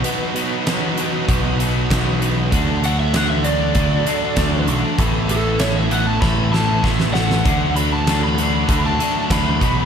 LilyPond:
<<
  \new Staff \with { instrumentName = "Lead electric guitar" } { \time 4/4 \key d \lydian \tempo 4 = 97 r1 | r8 fis''16 e''16 fis''16 e''16 d''2 r8 | r8 a'8 cis''16 e''16 fis''16 a''16 b''8 a''8 r8 fis''8~ | fis''8 b''16 a''8 b''4 a''8. b''4 | }
  \new Staff \with { instrumentName = "Tonewheel organ" } { \time 4/4 \key d \lydian <b dis' fis' b'>1 | <a d' fis' a'>1 | <a b e' a'>1 | <a d' fis' a'>2.~ <a d' fis' a'>8 <b dis' fis' b'>8 | }
  \new Staff \with { instrumentName = "Distorted electric guitar" } { \time 4/4 \key d \lydian <b, fis b dis' fis'>8 <b, fis b dis' fis'>8 <b, fis b dis' fis'>8 <b, fis b dis' fis'>8 <b, fis b dis' fis'>8 <b, fis b dis' fis'>8 <b, fis b dis' fis'>8 <b, fis b dis' fis'>8 | <d fis a d' fis'>8 <d fis a d' fis'>8 <d fis a d' fis'>8 <d fis a d' fis'>8 <d fis a d' fis'>8 <d fis a d' fis'>8 <d fis a d' fis'>8 <d fis a d' fis'>8 | <a b e' a'>8 <a b e' a'>8 <a b e' a'>8 <a b e' a'>8 <a b e' a'>8 <a b e' a'>8 <a b e' a'>8 <a b e' a'>8 | <d fis a d' fis'>8 <d fis a d' fis'>8 <d fis a d' fis'>8 <d fis a d' fis'>8 <d fis a d' fis'>8 <d fis a d' fis'>8 <d fis a d' fis'>8 <b, fis b dis' fis'>8 | }
  \new Staff \with { instrumentName = "Overdriven electric guitar" } { \clef bass \time 4/4 \key d \lydian <b, fis b>8 <b, fis b>8 <b, fis b>8 <b, fis b>8 <b, fis b>8 <b, fis b>8 <b, fis b>8 <b, fis b>8 | <d a d'>8 <d a d'>8 <d a d'>8 <d a d'>8 <d a d'>8 <d a d'>8 <d a d'>8 <d a d'>8 | <a, e a>8 <a, e a>8 <a, e a>8 <a, e a>8 <a, e a>8 <a, e a>8 <a, e a>8 <a, e a>8 | <d a d'>8 <d a d'>8 <d a d'>8 <d a d'>8 <d a d'>8 <d a d'>8 <d a d'>8 <b, fis b>8 | }
  \new Staff \with { instrumentName = "Picked electric bass" } { \clef bass \time 4/4 \key d \lydian r2 b,,4 b,,4 | d,2 d,8 r8 d,8 b,,16 r16 | a,,2 a,,4 a,,4 | d,2 d,8 r8 d,8 b,,8 | }
  \new DrumStaff \with { instrumentName = "Drums" } \drummode { \time 4/4 hh8 hh8 <hh sn>8 hh8 <hh bd>8 hh8 <hh bd sn>8 hh8 | <hh bd>8 hh8 <hh sn>8 hh8 <hh bd>8 hh8 <hh bd sn>8 hh8 | <hh bd>8 hh8 <hh sn>8 hh8 <bd sn>8 sn8 <bd sn>16 sn16 sn16 sn16 | <hh bd>8 hh8 <hh sn>8 hh8 <hh bd>8 hh8 <hh bd sn>8 <hh bd sn>8 | }
>>